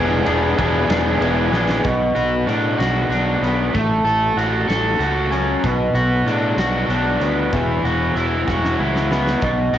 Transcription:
0.00 0.24 E1 medium
0.00 0.25 E3 medium
0.00 0.25 B3 medium
0.00 0.26 D4 loud
0.00 0.26 G#4 loud
0.26 0.55 E1 medium
0.26 0.56 E3 medium
0.26 0.57 B3 medium
0.26 0.57 D4 medium
0.26 0.58 G#4 medium
0.26 ride medium
0.57 0.87 E1 medium
0.57 0.88 E3 medium
0.57 0.89 B3 medium
0.57 0.89 D4 medium
0.57 0.90 G#4 medium
0.57 kick medium
0.57 ride medium
0.89 1.17 E1 medium
0.89 1.20 E3 medium
0.89 1.20 B3 loud
0.89 1.20 D4 loud
0.89 1.21 G#4 loud
0.89 snare loud
0.89 ride loud
1.21 1.49 E1 medium
1.21 1.51 E3 medium
1.21 1.52 B3 medium
1.21 1.52 D4 medium
1.21 1.53 G#4 medium
1.21 ride medium
1.52 1.81 A#1 medium
1.52 1.82 E3 medium
1.52 1.83 B3 medium
1.52 1.83 D4 medium
1.52 1.83 G#4 medium
1.52 snare medium
1.69 snare medium
1.84 2.12 B1 medium
1.84 3.42 B2 medium
1.84 kick loud
1.84 closed hi-hat medium
2.15 2.44 B1 medium
2.15 2.78 F#4 medium
2.15 closed hi-hat medium
2.47 2.75 A2 medium
2.47 3.09 D4 medium
2.47 closed hi-hat medium
2.78 3.07 B1 medium
2.78 4.04 F#4 medium
2.78 snare loud
2.78 closed hi-hat medium
3.09 3.37 B1 medium
3.09 3.74 D4 medium
3.09 closed hi-hat medium
3.41 3.69 B1 medium
3.41 3.74 B3 medium
3.41 closed hi-hat medium
3.73 4.02 A1 medium
3.73 5.32 A3 medium
3.73 kick loud
3.73 closed hi-hat medium
4.04 4.32 A1 medium
4.04 4.67 A4 medium
4.04 closed hi-hat medium
4.36 4.64 A1 medium
4.36 4.99 F#4 medium
4.36 closed hi-hat medium
4.68 4.96 A1 medium
4.68 5.63 A4 medium
4.68 snare medium
4.68 closed hi-hat medium
4.99 5.55 C#2 medium
4.99 5.95 F#4 medium
4.99 closed hi-hat medium
5.31 5.63 C#4 medium
5.31 closed hi-hat medium
5.63 5.91 B1 medium
5.63 7.21 B2 medium
5.63 kick loud
5.63 closed hi-hat medium
5.93 6.22 B1 medium
5.93 6.57 F#4 medium
5.93 closed hi-hat medium
6.26 6.54 A2 medium
6.26 6.89 D4 medium
6.26 closed hi-hat medium
6.56 6.85 B1 medium
6.56 7.56 F#4 medium
6.56 snare loud
6.56 closed hi-hat medium
6.88 7.17 B1 medium
6.88 7.53 D4 medium
6.88 closed hi-hat medium
7.20 7.48 D2 medium
7.20 9.11 B3 medium
7.20 closed hi-hat medium
7.53 7.81 E1 medium
7.53 9.11 E3 medium
7.53 kick loud
7.53 closed hi-hat medium
7.83 8.12 E1 medium
7.83 8.47 F#4 medium
7.83 closed hi-hat medium
8.15 8.43 E1 medium
8.15 8.78 E4 medium
8.15 closed hi-hat medium
8.48 8.75 E1 medium
8.48 9.73 F#4 medium
8.48 kick medium
8.48 snare medium
8.65 snare medium
8.79 9.35 C#2 medium
8.79 9.42 E4 medium
8.96 snare medium
9.11 9.42 B3 medium
9.11 snare medium
9.27 snare medium
9.42 9.70 B1 medium
9.42 9.78 B2 medium
9.42 kick loud
9.42 closed hi-hat medium
9.73 9.78 B1 medium
9.73 9.78 F#4 medium
9.73 closed hi-hat medium

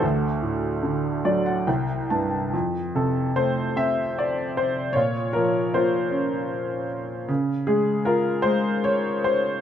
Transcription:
0.00 1.63 D2 medium
0.00 1.64 A3 soft
0.00 1.64 D4 soft
0.00 1.62 F#4 medium
0.42 1.63 A2 soft
0.83 1.65 D3 soft
1.25 1.66 F#3 soft
1.25 1.45 D5 medium
1.46 1.66 F#5 soft
1.67 2.51 C2 soft
1.67 2.07 G5 soft
2.10 2.52 G2 soft
2.10 2.50 A5 soft
2.53 4.92 F2 soft
2.95 4.53 C3 soft
2.95 3.38 A4 medium
3.36 4.92 A3 soft
3.36 3.78 C5 medium
3.76 4.92 C4 soft
3.76 4.14 E5 medium
4.19 4.59 D5 medium
4.57 4.98 C5 medium
4.93 7.25 A#2 medium
4.93 5.75 F4 soft
4.93 5.35 C#5 medium
5.33 6.86 F3 soft
5.33 5.70 A#4 medium
5.74 7.25 A#3 soft
5.74 6.87 F4 soft
5.74 6.86 C5 medium
6.11 7.25 C#4 soft
7.28 9.61 C#3 medium
7.67 8.44 G#3 soft
7.67 8.04 G#4 medium
8.05 9.61 F4 medium
8.05 8.42 A#4 medium
8.42 9.61 G#3 soft
8.42 8.85 C5 medium
8.84 9.22 C#5 medium
9.24 9.61 C5 medium

